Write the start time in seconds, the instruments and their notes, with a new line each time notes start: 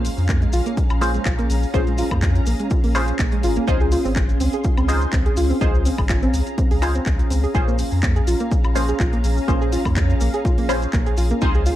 Already playing: synth stab C#4 F4 G#4 C5, string machine C#4 G#4 F5 A#5
0.05 open hi-hat, maracas
0.18 sub bass F2, maracas
0.29 synth arpeggio sound A#3, kick, clap, closed hi-hat, maracas
0.42 synth arpeggio sound G#3, closed hi-hat, maracas
0.53 sub bass A#1, synth arpeggio sound F4, open hi-hat, maracas
0.66 synth arpeggio sound A#3, closed hi-hat, maracas
0.77 kick, closed hi-hat, maracas
0.90 sub bass A#1, high woodblock, maracas
1.01 synth arpeggio sound A#3, synth stab C#4 F4 G#4 C5, open hi-hat, maracas
1.14 synth arpeggio sound G#3, closed hi-hat, maracas
1.25 sub bass A#1, synth arpeggio sound F4, kick, clap, closed hi-hat, maracas
1.39 synth arpeggio sound A#3, closed hi-hat, maracas
1.50 sub bass A#1, open hi-hat, maracas
1.63 maracas
1.74 sub bass A#1, synth arpeggio sound A#3, synth stab C#4 F4 G#4 C5, kick, closed hi-hat, maracas
1.87 synth arpeggio sound G#3, closed hi-hat, maracas
1.98 synth arpeggio sound F4, open hi-hat, maracas
2.11 sub bass F2, synth arpeggio sound A#3, kick, closed hi-hat, high woodblock, maracas
2.22 kick, clap, closed hi-hat, maracas
2.35 closed hi-hat, maracas
2.46 sub bass A#1, synth arpeggio sound A#3, open hi-hat, maracas
2.60 synth arpeggio sound G#3, closed hi-hat, maracas
2.70 synth arpeggio sound F4, kick, closed hi-hat, maracas
2.84 sub bass A#1, synth arpeggio sound A#3, open hi-hat, maracas
2.95 synth stab C#4 F4 G#4 C5, open hi-hat, high woodblock, maracas
3.08 closed hi-hat, maracas
3.19 sub bass A#1, synth arpeggio sound A#3, kick, clap, closed hi-hat, maracas
3.32 synth arpeggio sound G#3, closed hi-hat, maracas
3.43 sub bass G#1, synth arpeggio sound F4, open hi-hat, maracas
3.56 synth arpeggio sound A#3, closed hi-hat, maracas
3.67 sub bass C#2, synth arpeggio sound C4, synth stab D#4 F4 G#4 C5, string machine F5 C6, kick, closed hi-hat, maracas
3.81 synth arpeggio sound G#4, maracas
3.92 synth arpeggio sound F4, open hi-hat, maracas
4.05 sub bass G#1, synth arpeggio sound C4, maracas
4.16 kick, clap, closed hi-hat, maracas
4.29 closed hi-hat, maracas
4.40 sub bass C#2, synth arpeggio sound C4, open hi-hat, maracas
4.53 synth arpeggio sound G#4, closed hi-hat, maracas
4.64 synth arpeggio sound F4, kick, closed hi-hat, maracas
4.77 sub bass C#2, synth arpeggio sound C4, high woodblock, maracas
4.88 synth stab D#4 F4 G#4 C5, open hi-hat, maracas
5.02 closed hi-hat, maracas
5.12 sub bass C#2, synth arpeggio sound C4, kick, clap, closed hi-hat, maracas
5.26 synth arpeggio sound G#4, closed hi-hat, maracas
5.37 sub bass C#2, synth arpeggio sound F4, open hi-hat, maracas
5.50 synth arpeggio sound C4, maracas
5.61 sub bass C#2, synth stab D#4 F4 G#4 C5, string machine A#5, kick, closed hi-hat, maracas
5.75 maracas
5.85 synth arpeggio sound C4, open hi-hat, maracas
5.98 sub bass G#1, synth arpeggio sound G#4, kick, high woodblock, maracas
6.09 synth arpeggio sound F4, kick, clap, closed hi-hat, maracas
6.22 synth arpeggio sound C4, closed hi-hat, maracas
6.34 sub bass C#2, open hi-hat, maracas
6.47 closed hi-hat, maracas
6.58 synth arpeggio sound C4, kick, closed hi-hat, maracas
6.71 sub bass C#2, synth arpeggio sound G#4, open hi-hat, maracas
6.82 synth stab D#4 F4 G#4 C5, synth arpeggio sound F4, open hi-hat, high woodblock, maracas
6.95 synth arpeggio sound C4, closed hi-hat, maracas
7.06 sub bass C#2, kick, clap, closed hi-hat, maracas
7.19 closed hi-hat, maracas
7.30 sub bass C#2, synth arpeggio sound C4, open hi-hat, maracas
7.43 synth arpeggio sound G#4, maracas
7.55 sub bass A#1, synth stab C#4 F4 G#4 C5, string machine C#4 G#4 A#5, synth arpeggio sound F4, kick, closed hi-hat, maracas
7.68 synth arpeggio sound A#3, maracas
7.79 open hi-hat, maracas
7.92 sub bass F2, maracas
8.03 synth arpeggio sound A#3, kick, clap, closed hi-hat, maracas
8.16 synth arpeggio sound G#4, closed hi-hat, maracas
8.27 sub bass A#1, synth arpeggio sound F4, open hi-hat, maracas
8.40 synth arpeggio sound A#3, closed hi-hat, maracas
8.52 kick, closed hi-hat, maracas
8.64 sub bass A#1, high woodblock, maracas
8.75 synth arpeggio sound A#3, synth stab C#4 F4 G#4 C5, open hi-hat, maracas
8.89 synth arpeggio sound G#4, closed hi-hat, maracas
9.00 sub bass A#1, synth arpeggio sound F4, kick, clap, closed hi-hat, maracas
9.13 synth arpeggio sound A#3, closed hi-hat, maracas
9.24 sub bass A#1, open hi-hat, maracas
9.37 maracas
9.48 sub bass A#1, synth arpeggio sound A#3, synth stab C#4 F4 G#4 C5, kick, closed hi-hat, maracas
9.61 synth arpeggio sound G#4, maracas
9.72 synth arpeggio sound F4, open hi-hat, maracas
9.85 sub bass F2, synth arpeggio sound A#3, kick, high woodblock, maracas
9.96 kick, clap, closed hi-hat, maracas
10.10 closed hi-hat, maracas
10.21 sub bass A#1, synth arpeggio sound A#3, open hi-hat, maracas
10.34 synth arpeggio sound G#4, closed hi-hat, maracas
10.45 synth arpeggio sound F4, kick, closed hi-hat, maracas
10.58 sub bass A#1, synth arpeggio sound A#3, open hi-hat, maracas
10.69 synth stab C#4 F4 G#4 C5, open hi-hat, high woodblock, maracas
10.82 closed hi-hat, maracas
10.93 sub bass A#1, synth arpeggio sound A#3, kick, clap, closed hi-hat, maracas
11.06 synth arpeggio sound G#4, closed hi-hat, maracas
11.17 sub bass A#1, synth arpeggio sound F4, open hi-hat, maracas
11.31 synth arpeggio sound A#3, closed hi-hat, maracas
11.41 sub bass C#2, synth arpeggio sound C4, string machine C#4 C6, synth stab D#4 F4 G#4 C5, kick, closed hi-hat, maracas
11.54 synth arpeggio sound G#4, maracas
11.66 synth arpeggio sound F4, open hi-hat, maracas